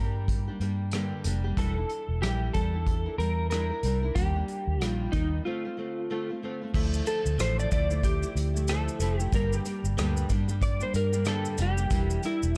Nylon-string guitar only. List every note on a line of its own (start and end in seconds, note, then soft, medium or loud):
0.00 0.48 G3 medium
0.00 0.48 A#3 medium
0.00 0.47 D4 medium
0.00 0.46 G4 medium
0.48 0.59 G3 soft
0.48 0.60 A#3 soft
0.48 0.60 D4 medium
0.48 0.61 G4 medium
0.60 0.92 G3 medium
0.60 0.93 A#3 medium
0.60 0.93 D4 medium
0.60 0.94 G4 medium
0.93 1.25 G2 medium
0.93 1.26 D3 medium
0.93 1.24 G3 medium
0.93 1.25 A#3 loud
0.93 1.26 D4 medium
0.93 1.26 G4 loud
1.25 1.45 G3 medium
1.25 1.45 A#3 medium
1.25 1.44 D4 medium
1.25 1.43 G4 medium
1.44 1.56 G3 soft
1.44 1.57 A#3 soft
1.44 1.56 D4 soft
1.44 1.57 G4 medium
1.57 1.77 E3 medium
1.57 1.77 G3 medium
1.57 1.77 D4 medium
1.57 1.76 E4 medium
1.57 1.78 A#4 medium
1.77 2.21 D4 soft
1.77 2.22 E4 soft
2.22 2.54 E3 medium
2.22 2.52 G3 medium
2.22 2.53 D4 medium
2.22 2.54 E4 medium
2.22 2.54 A#4 medium
2.53 2.74 G3 medium
2.53 2.74 D4 medium
2.53 2.73 E4 medium
2.53 2.75 A#4 medium
2.74 3.07 D4 soft
2.74 3.06 E4 soft
3.06 3.18 D4 soft
3.06 3.19 E4 soft
3.06 3.19 A#4 medium
3.19 3.50 G3 medium
3.19 3.51 D4 medium
3.19 3.51 E4 medium
3.19 3.52 A#4 medium
3.51 3.71 E3 medium
3.51 3.71 G3 medium
3.51 3.71 D4 medium
3.51 3.71 E4 medium
3.51 3.70 A#4 medium
3.71 3.84 D4 soft
3.71 3.85 E4 soft
3.71 3.84 A#4 soft
3.84 4.04 G3 medium
3.84 4.04 D4 medium
3.84 4.03 E4 medium
3.84 4.01 A#4 medium
4.03 4.16 D4 soft
4.03 4.17 E4 soft
4.03 4.16 A#4 medium
4.16 4.36 D#3 medium
4.16 4.36 G3 medium
4.16 4.36 A#3 medium
4.16 4.34 D4 medium
4.35 4.81 G3 soft
4.35 4.81 A#3 soft
4.35 4.81 D4 medium
4.81 5.13 D#3 medium
4.81 5.14 G3 medium
4.81 5.14 A#3 medium
4.81 5.14 D4 medium
5.14 5.45 D#3 medium
5.14 5.46 G3 medium
5.14 5.46 A#3 medium
5.45 5.65 D3 medium
5.45 5.65 A3 medium
5.45 5.65 C4 medium
5.45 5.64 F4 medium
5.65 5.77 A3 soft
5.65 5.78 C4 soft
5.65 5.78 F4 soft
5.77 6.09 D3 medium
5.77 6.10 A3 soft
5.77 6.10 C4 medium
5.77 6.10 F4 medium
6.10 6.29 D3 medium
6.10 6.30 A3 medium
6.10 6.30 C4 medium
6.10 6.28 F4 medium
6.29 6.42 A3 soft
6.29 6.43 C4 soft
6.29 6.42 F4 soft
6.42 6.62 D3 medium
6.42 6.62 A3 medium
6.42 6.62 C4 medium
6.42 6.60 F4 medium
6.61 6.73 A3 soft
6.61 6.74 C4 soft
6.61 6.74 F4 soft
6.73 7.04 D3 medium
6.73 7.05 F3 medium
6.73 7.06 A3 medium
6.73 7.06 E4 loud
7.05 7.36 D3 medium
7.05 7.37 F3 medium
7.05 7.38 A3 medium
7.05 7.38 E4 medium
7.38 7.69 D3 medium
7.38 7.70 F3 medium
7.38 7.71 A3 medium
7.38 7.72 E4 medium
7.70 7.90 D3 medium
7.70 7.91 F3 medium
7.70 7.91 A3 medium
7.70 7.89 E4 medium
7.90 8.23 F3 soft
7.90 8.22 A3 soft
7.90 8.21 E4 soft
8.22 8.55 F3 soft
8.22 8.55 A3 soft
8.22 8.53 E4 soft
8.54 8.67 F3 soft
8.54 8.68 A3 soft
8.54 8.68 E4 soft
8.68 8.99 D3 medium
8.68 9.00 F3 medium
8.68 9.00 A3 medium
8.68 9.01 E4 loud
9.00 9.20 D3 medium
9.00 9.20 F3 medium
9.00 9.19 A3 medium
9.00 9.18 E4 medium
9.19 9.32 F3 soft
9.19 9.33 A3 soft
9.19 9.32 E4 soft
9.32 9.65 G2 medium
9.32 9.65 D3 medium
9.32 9.64 G3 medium
9.32 9.64 A#3 medium
9.32 9.65 D4 medium
9.32 9.66 G4 medium
9.65 9.96 G3 medium
9.65 9.97 A#3 medium
9.65 9.97 D4 medium
9.65 9.97 G4 medium
9.97 10.29 G2 medium
9.97 10.29 D3 medium
9.97 10.28 G3 medium
9.97 10.29 A#3 medium
9.97 10.30 D4 medium
9.97 10.30 G4 medium
10.29 10.49 G3 medium
10.29 10.48 A#3 medium
10.29 10.48 D4 medium
10.29 10.47 G4 medium
10.48 10.82 G3 soft
10.48 10.81 A#3 soft
10.48 10.80 D4 soft
10.48 10.79 G4 soft
10.80 11.14 G3 soft
10.80 11.13 A#3 soft
10.80 11.12 D4 medium
10.80 11.11 G4 medium
11.12 11.25 G3 soft
11.12 11.25 A#3 soft
11.12 11.26 D4 soft
11.12 11.26 G4 medium
11.25 11.58 G2 loud
11.25 11.58 D3 medium
11.25 11.57 G3 medium
11.25 11.58 A#3 medium
11.25 11.58 D4 medium
11.25 11.59 G4 medium
11.58 11.78 G3 medium
11.58 11.78 A#3 medium
11.58 11.77 D4 medium
11.58 11.76 G4 medium
11.77 11.90 G3 soft
11.77 11.91 A#3 soft
11.77 11.90 D4 medium
11.77 11.91 G4 medium
11.91 12.23 E3 medium
11.91 12.22 G3 medium
11.91 12.23 D4 medium
11.91 12.24 E4 medium
11.91 12.24 A#4 medium
12.23 12.55 G3 medium
12.23 12.56 D4 medium
12.23 12.56 E4 medium
12.23 12.56 A#4 medium